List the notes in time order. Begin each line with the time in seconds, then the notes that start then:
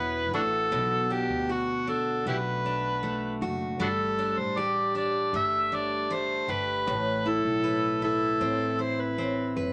Already playing: E1 E3 B3 E4 F#4 B4
0.33 A1 D4 F#4 A4
0.71 B1 B2
1.10 D4 G4
1.29 D2
1.49 F#4
1.87 D4 A4
2.25 B1 A3 E4 G4 B4
2.65 D4
3.03 A3
3.41 F#1 F#4
3.79 G1 G3 D4 F#4 A4
4.19 D4
4.37 A1 C5
4.57 G4 D5
4.95 D4 D5
5.33 G1 A3 E5
5.72 D4 D5
6.10 A3 C5
6.48 G1 G4 B4
6.87 A1 A2
7.26 E4 A4
7.44 B1
7.64 B4
8.02 E4 A4
8.41 A1 C4
8.79 E4 C5
9.01 B4
9.18 C4
9.56 F#1 B4